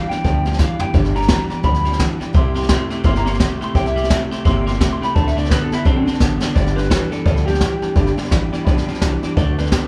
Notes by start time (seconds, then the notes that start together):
Already playing: G3
0.09 G2 E3 G3 B3 D4 G4 D5 G5 B5, muted upright bass stroke, snare
0.24 D2 G2 D3 F3 G3 B3 D4 G4 D5 G5 A5, kick, snare
0.45 G2 F3 G3 B3 D4 G4 D5 G5 B5, snare
0.53 snare
0.58 G2 E3 G3 B3 D4 G4 D5 F5 G5 D6, kick, snare, hi-hat pedal
0.79 G2 E3 G3 B3 D4 G4 D5 G5 B5, muted upright bass stroke, floor tom
0.93 G1 G2 D3 G3 B3 D4 G4 D5 G5 B5, kick, snare
1.05 snare
1.15 G2 D3 G3 B3 D4 G4 D5 G5 A5 A#5, snare
1.22 snare
1.28 G2 E3 G3 B3 D4 G5, kick, snare, hi-hat pedal
1.50 G2 E3 G3 B3 D4 G4 D5 G5 B5, muted upright bass stroke, snare
1.63 D2 G2 D3 F3 G3 B3 D4 G4 D5 G5 B5, kick, snare
1.74 snare
1.84 G2 F3 G3 B3 D4 G4 D5 G5, snare
1.92 snare
1.99 G2 E3 G3 D4 D5 G5 A5, kick, snare, hi-hat pedal
2.20 G2 E3 G3 B3 D4 G4 D5 G5 B5, muted upright bass stroke, snare
2.33 C2 C3 G3 C4 E4 G4 E5 G5 C6, kick, snare
2.54 C3 G3 C4 E4 G4 E5 G5 C6, snare
2.63 snare
2.69 C3 G3 A3 C4 E4 G4 E5 G5 C6, kick, snare, hi-hat pedal
2.90 C3 A3 C4 E4 G4 E5 G5 D6, muted upright bass stroke, snare
3.03 G1 C3 G3 A#3 C4 E4 G4 E5 G5 C6, kick, snare
3.15 A#5, snare
3.25 C3 A#3 C4 E4 G4 E5 G5 C6, snare
3.33 snare
3.39 C3 G3 A3 C4 E4 E5 G5 C6, kick, snare, hi-hat pedal
3.60 C3 A3 C4 E4 G4 E5 G5 B5 C6, muted upright bass stroke, snare
3.74 C2 C3 G3 C4 E4 G4 E5 G5 D6, kick, snare
3.86 E5, snare
3.96 C3 G3 C4 E4 G4 E5 G5 D6, snare
4.04 snare
4.09 C3 G3 A3 C4 E4 G4 E5 G5 B5, kick, snare, hi-hat pedal
4.31 C3 A3 C4 E4 G4 E5 G5 C6, muted upright bass stroke, snare
4.45 G1 C3 G3 A#3 C4 E4 G4 E5 G5 C6, kick, snare
4.66 C3 A#3 C4 E4 G4 E5 G5 C6, snare
4.74 snare
4.80 C3 G3 A3 C4 E4 G4 E5 G5 D6, kick, snare, hi-hat pedal
4.93 C6
5.01 C3 A3 C4 E4 G4 E5 G5 B5 C6, muted upright bass stroke, snare
5.15 D2 D3 F#3 A3 C4 D4 A4 D5 F#5 A5, kick, snare
5.27 E5, snare
5.35 D3 A3 C4 D4 A4 D5 F#5 B5, snare
5.45 snare
5.49 D3 F#3 B3 C4 D4 A4 B4 D5 F#5 A5, kick, snare, hi-hat pedal
5.62 A4
5.71 D3 B3 C4 D4 E4 A4 D5 F#5 A5, muted upright bass stroke, snare
5.85 B1 D3 F#3 C4 D4 A4 D5 F#5 A5, kick, snare
5.97 D4
6.06 D3 C4 D4 A4 D5 F#5 A5, muted upright bass stroke, snare
6.14 snare
6.19 A1 D3 F#3 B3 C4 D4 A4 D5 F#5 A5, kick, snare, hi-hat pedal
6.41 D3 B3 C4 D4 A4 D5 F#5 A5, muted upright bass stroke, snare
6.55 G1 G2 D3 G3 B3 D4 G4 D5 G5 B5, kick, snare
6.66 snare
6.76 G2 D3 G3 B3 D4 G4 B4 D5 G5 B5, snare
6.84 snare
6.90 G2 E3 G3 B3 G4 D5 G5 B5, kick, snare, hi-hat pedal
7.11 G2 E3 G3 B3 D4 G4 A4 D5 G5 B5, muted upright bass stroke, snare
7.25 D2 G2 D3 F3 G3 B3 D4 G4 D5 G5 B5, kick, snare
7.36 snare
7.46 G2 F3 G3 B3 D4 G4 D5 G5 A5, snare
7.54 snare
7.61 G2 E3 G3 B3 D4 G4 D5 G5 B5, kick, snare, hi-hat pedal
7.81 G2 E3 G3 B3 D4 G4 D5 G5 A5, muted upright bass stroke, snare
7.95 G1 G2 D3 G3 B3 D4 G4 D5 G5 B5, kick, snare
8.06 snare
8.17 G2 D3 G3 B3 D4 G4 D5 G5 B5, muted upright bass stroke, snare
8.24 snare
8.30 A1 G2 E3 G3 B3 D4 D5 G5 B5, kick, snare, hi-hat pedal
8.34 G4
8.52 G2 E3 G3 B3 D4 G4 D5 G5 B5, muted upright bass stroke, snare
8.65 B1 G2 D3 F3 G3 B3 G4 D5 G5 B5, kick, snare
8.69 D4
8.77 snare
8.86 G2 F3 D4 G4 D5 G5 B5, muted upright bass stroke, snare
8.90 G3 B3
8.94 snare
9.01 C2 G2 E3 G3 B3 D4 G4 D5 G5 A5, kick, snare, hi-hat pedal
9.22 G2 E3 B3 D4 G4 D5 G5 B5, muted upright bass stroke, snare
9.26 G3
9.36 D2 D3 F#3 A3 C4 D4 A4 D5 F#5 A5, kick, snare
9.57 D3 A3 C4 D4 A4 B4 D5 A5, snare
9.65 snare
9.72 D3 F#3 B3 C4 D4 A4 D5 F#5 A5, kick, snare, hi-hat pedal